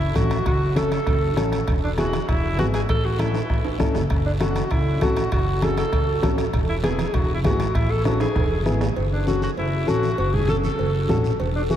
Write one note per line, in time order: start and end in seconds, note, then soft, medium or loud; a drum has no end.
0.00 0.15 F#1 medium
0.00 0.17 E4 medium
0.15 0.40 A1 medium
0.15 0.37 C#4 medium
0.15 0.37 F#4 medium
0.15 0.46 F#4 medium
0.15 0.37 A4 medium
0.15 bombo low medium
0.15 bombo rim medium
0.15 high conga medium
0.15 high timbale medium
0.15 short guiro medium
0.31 bombo rim medium
0.31 high timbale medium
0.31 short guiro medium
0.46 0.95 F#1 medium
0.46 0.78 F#4 loud
0.46 bombo low medium
0.46 bombo rim medium
0.46 high timbale medium
0.46 long guiro medium
0.75 0.97 C#4 medium
0.75 0.98 F#4 medium
0.75 0.92 A4 medium
0.75 0.98 A4 medium
0.75 bombo rim medium
0.75 high conga medium
0.75 high timbale medium
0.75 short guiro medium
0.92 1.49 A4 medium
0.92 bombo rim medium
0.92 high timbale medium
0.92 short guiro medium
1.07 1.37 F#1 medium
1.07 bombo low medium
1.07 bombo rim medium
1.07 high timbale medium
1.07 long guiro medium
1.37 1.61 A1 medium
1.37 1.58 C#4 medium
1.37 1.58 F#4 medium
1.37 1.59 A4 medium
1.37 bombo rim medium
1.37 high conga medium
1.37 high timbale medium
1.37 short guiro medium
1.52 bombo rim medium
1.52 high timbale medium
1.52 short guiro medium
1.67 2.16 E1 medium
1.67 bombo low medium
1.67 bombo rim medium
1.67 high timbale medium
1.67 long guiro medium
1.84 1.90 D4 medium
1.98 2.19 B3 medium
1.98 2.19 E4 medium
1.98 2.30 F#4 medium
1.98 2.19 G#4 medium
1.98 bombo rim medium
1.98 high conga medium
1.98 high timbale medium
1.98 short guiro medium
2.13 bombo rim medium
2.13 high timbale medium
2.13 short guiro medium
2.28 2.58 E1 medium
2.28 2.58 E4 medium
2.28 bombo low medium
2.28 bombo rim medium
2.28 high timbale medium
2.28 long guiro medium
2.58 2.83 G#1 medium
2.58 2.80 B3 medium
2.58 2.80 E4 medium
2.58 2.66 F#4 medium
2.58 2.80 G#4 medium
2.58 bombo rim medium
2.58 high conga medium
2.58 high timbale medium
2.58 short guiro medium
2.74 2.81 G#4 medium
2.74 bombo rim medium
2.74 high timbale medium
2.74 short guiro medium
2.89 3.38 A1 medium
2.89 3.07 A4 loud
2.89 bombo low medium
2.89 bombo rim medium
2.89 high timbale medium
2.89 long guiro medium
3.05 3.21 F#4 medium
3.19 3.40 C#4 medium
3.19 3.40 E4 medium
3.19 3.65 E4 medium
3.19 3.41 A4 medium
3.19 bombo rim medium
3.19 high conga medium
3.19 high timbale medium
3.19 short guiro medium
3.34 bombo rim medium
3.34 high timbale medium
3.34 short guiro medium
3.50 3.64 A1 medium
3.50 bombo low medium
3.50 bombo rim medium
3.50 long guiro medium
3.65 3.79 A1 medium
3.65 high timbale medium
3.79 3.94 G#1 medium
3.79 4.01 C#4 medium
3.79 4.01 E4 medium
3.79 4.01 A4 medium
3.79 bombo low medium
3.79 bombo rim medium
3.79 high conga medium
3.79 low timbale medium
3.79 short guiro medium
3.95 4.09 F#1 medium
3.95 bombo rim medium
3.95 low timbale medium
3.95 short guiro medium
4.10 4.59 F#1 medium
4.10 bombo low medium
4.10 bombo rim medium
4.10 high timbale medium
4.10 long guiro medium
4.26 4.33 D4 medium
4.40 4.62 C#4 medium
4.40 4.62 F#4 medium
4.40 4.73 F#4 medium
4.40 4.62 A4 medium
4.40 bombo rim medium
4.40 high conga medium
4.40 high timbale medium
4.40 short guiro medium
4.56 bombo rim medium
4.56 high timbale medium
4.56 short guiro medium
4.71 5.02 F#1 medium
4.71 5.02 E4 medium
4.71 bombo low medium
4.71 bombo rim medium
4.71 high timbale medium
4.71 long guiro medium
5.01 5.26 A1 medium
5.01 5.23 C#4 medium
5.01 5.23 F#4 medium
5.01 5.30 F#4 medium
5.01 5.23 A4 medium
5.01 bombo low medium
5.01 bombo rim medium
5.01 high conga medium
5.01 high timbale medium
5.01 short guiro medium
5.16 bombo rim medium
5.16 high timbale medium
5.16 short guiro medium
5.32 5.81 F#1 medium
5.32 5.65 F#4 loud
5.32 bombo low medium
5.32 bombo rim medium
5.32 high timbale medium
5.32 long guiro medium
5.62 5.83 C#4 medium
5.62 5.84 F#4 medium
5.62 5.84 G#4 medium
5.62 5.78 A4 loud
5.62 bombo rim medium
5.62 high conga medium
5.62 high timbale medium
5.62 short guiro medium
5.77 6.35 A4 loud
5.77 bombo rim medium
5.77 high timbale medium
5.77 short guiro medium
5.92 6.23 F#1 medium
5.92 bombo low medium
5.92 bombo rim medium
5.92 high timbale medium
5.92 long guiro medium
6.22 6.47 A1 medium
6.22 6.44 C#4 medium
6.22 6.44 F#4 medium
6.22 6.44 A4 medium
6.22 bombo low medium
6.22 bombo rim medium
6.22 high conga medium
6.22 high timbale medium
6.22 low timbale medium
6.22 short guiro medium
6.38 bombo rim medium
6.38 high timbale medium
6.38 short guiro medium
6.53 7.02 E1 medium
6.53 bombo low medium
6.53 bombo rim medium
6.53 high timbale medium
6.53 long guiro medium
6.69 6.76 E4 medium
6.83 7.05 B3 medium
6.83 7.05 E4 medium
6.83 7.15 G#4 medium
6.83 7.05 G#4 medium
6.83 bombo rim medium
6.83 high conga medium
6.83 high timbale medium
6.83 short guiro medium
6.99 bombo rim medium
6.99 high conga medium
6.99 high timbale medium
6.99 short guiro medium
7.14 7.45 E1 medium
7.14 7.34 F#4 medium
7.14 bombo low medium
7.14 bombo rim medium
7.14 high timbale medium
7.14 long guiro medium
7.34 7.39 E4 medium
7.44 7.69 G#1 medium
7.44 7.66 B3 medium
7.44 7.66 E4 medium
7.44 7.77 F#4 loud
7.44 7.66 G#4 medium
7.44 bombo low medium
7.44 bombo rim medium
7.44 high conga medium
7.44 high timbale medium
7.44 low timbale medium
7.44 short guiro medium
7.60 bombo rim medium
7.60 high timbale medium
7.60 short guiro medium
7.75 8.24 A1 medium
7.75 7.92 E4 loud
7.75 bombo low medium
7.75 bombo rim medium
7.75 high timbale medium
7.75 long guiro medium
7.90 8.05 A4 loud
8.05 8.27 C#4 medium
8.05 8.27 E4 medium
8.05 8.20 F#4 medium
8.05 8.27 A4 medium
8.05 bombo rim medium
8.05 high conga medium
8.05 high timbale medium
8.05 short guiro medium
8.20 8.77 G#4 medium
8.20 bombo rim medium
8.20 high timbale medium
8.20 short guiro medium
8.35 8.66 E1 medium
8.35 bombo low medium
8.35 bombo rim medium
8.35 high timbale medium
8.35 long guiro medium
8.66 8.90 G#1 medium
8.66 8.87 B3 medium
8.66 8.87 E4 medium
8.66 8.88 G#4 medium
8.66 bombo rim medium
8.66 high conga medium
8.66 short guiro medium
8.81 bombo rim medium
8.81 low timbale medium
8.81 short guiro medium
8.96 9.45 F#1 medium
8.96 cowbell loud
8.96 long guiro medium
9.13 9.26 D4 medium
9.27 9.48 C#4 medium
9.27 9.48 F#4 medium
9.27 9.41 F#4 medium
9.27 9.49 A4 medium
9.27 high conga medium
9.27 short guiro medium
9.42 9.50 F#4 medium
9.42 short guiro medium
9.57 9.88 F#1 medium
9.57 9.90 E4 medium
9.57 cowbell medium
9.57 long guiro medium
9.87 10.12 A1 medium
9.87 10.09 C#4 medium
9.87 10.09 F#4 medium
9.87 10.19 F#4 loud
9.87 10.09 A4 medium
9.87 high conga medium
9.87 short guiro medium
10.03 short guiro medium
10.18 10.67 F#1 medium
10.18 10.35 F#4 loud
10.18 cowbell loud
10.18 long guiro medium
10.34 10.48 G#4 medium
10.34 low conga medium
10.48 10.69 C#4 medium
10.48 10.70 F#4 medium
10.48 10.70 A4 medium
10.48 10.56 A4 loud
10.48 high conga medium
10.48 short guiro medium
10.64 11.21 A4 medium
10.64 high conga medium
10.64 short guiro medium
10.79 11.10 F#1 medium
10.79 cowbell medium
10.79 long guiro medium
11.09 11.34 A1 medium
11.09 11.30 C#4 medium
11.09 11.31 F#4 medium
11.09 11.31 A4 medium
11.09 high conga medium
11.09 low conga medium
11.09 low timbale medium
11.09 short guiro medium
11.24 short guiro medium
11.40 11.76 E1 medium
11.40 cowbell loud
11.40 long guiro medium
11.56 11.62 D4 medium
11.70 11.76 B3 medium
11.70 11.76 E4 medium
11.70 11.76 F#4 medium
11.70 11.76 G#4 medium
11.70 high conga medium
11.70 short guiro medium